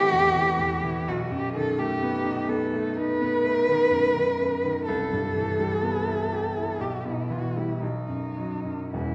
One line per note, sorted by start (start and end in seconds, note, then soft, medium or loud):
0.00 1.03 A1 medium
0.00 0.26 E3 soft
0.00 1.09 A3 soft
0.00 1.09 C4 medium
0.00 1.09 E4 soft
0.00 1.09 G4 loud
0.12 0.50 E2 soft
0.35 0.73 E3 soft
0.59 0.97 E2 soft
0.83 1.07 E3 soft
1.08 4.84 B1 medium
1.08 1.32 F#4 medium
1.30 1.69 F#2 soft
1.30 1.54 G4 medium
1.54 1.93 D#3 soft
1.54 1.81 A4 medium
1.78 2.16 A3 soft
1.78 2.50 G4 medium
2.03 2.40 B3 soft
2.25 2.63 D#4 soft
2.49 2.87 B3 soft
2.49 2.98 A4 medium
2.74 3.11 A3 soft
2.96 3.34 D#4 medium
2.96 4.85 B4 loud
3.21 3.58 B3 soft
3.44 3.82 A3 soft
3.68 4.06 D#3 soft
3.91 4.29 F#2 soft
4.14 4.53 D#3 soft
4.40 4.78 F#2 soft
4.64 4.88 D#3 soft
4.85 6.77 C2 medium
4.85 6.82 A4 loud
5.13 5.50 G2 soft
5.35 5.73 E3 soft
5.59 5.97 G3 soft
5.83 6.21 B3 soft
6.06 6.45 E4 soft
6.32 6.71 G4 soft
6.56 6.81 E4 soft
6.79 7.78 B1 soft
6.79 7.07 G4 medium
7.05 7.46 B2 soft
7.05 7.33 E4 medium
7.30 7.71 E3 soft
7.30 7.58 F#4 medium
7.57 7.82 G3 soft
7.57 7.82 E4 medium
7.81 8.90 B1 soft
7.81 8.92 D#4 medium
8.09 8.53 F#2 soft
8.37 8.82 F#3 soft
8.65 8.94 F#2 soft
8.93 9.15 E1 soft
8.93 9.15 E2 soft
8.93 9.15 E4 medium